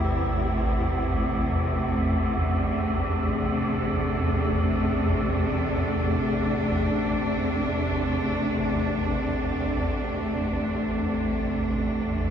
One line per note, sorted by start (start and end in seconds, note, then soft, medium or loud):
0.00 9.38 A1 medium
0.00 9.39 E2 medium
0.00 12.30 C3 medium
0.00 12.30 A3 medium
0.00 2.75 E4 medium
2.39 12.30 D4 medium
9.39 12.30 A1 medium
9.39 12.30 E2 medium